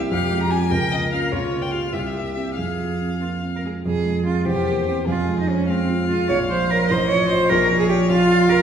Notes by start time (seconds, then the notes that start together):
Already playing: C2 A#3 C4 E4 G4
0.11 F2 F5
0.31 G#3
0.43 A#5
0.51 C4 F4 G#5
0.71 C#2 A#4 G5
0.92 A#3 D#5
1.13 C#4 F4 F5
1.32 C#2 F4 C#5
1.52 A#3
1.62 G5
1.71 F4 G4 F5
1.93 C2 G4 E5
1.99 F5
2.07 E5
2.16 A#3
2.34 C4 G4 E5
2.56 F2 G#4 F5
2.79 F4
3.00 C4
3.20 A#3 F4
3.43 C4
3.56 A#4
3.64 G#3 G#4
3.86 F2 G#4
4.06 G#3
4.26 C4 F4 G#4
4.46 E2 G4 C5
4.67 A#3
4.87 C4 G4 C5
5.07 F2 F4 G#4
5.28 G#3
5.40 D#4
5.48 C#4 C5
5.68 G#3 C4 F5
5.89 F4
6.09 G#3 F4
6.29 A#1 C#5
6.49 F3 C5
6.70 F4 A#4 C#5
6.89 A1 C5 D#5
7.09 F3 C#5
7.29 F4 C5 D#5
7.49 A#1 A#4 C#5
7.70 F3
7.79 G#4
7.89 G4 C#5
8.09 F3 F4 F5
8.30 F4
8.49 F3 A#4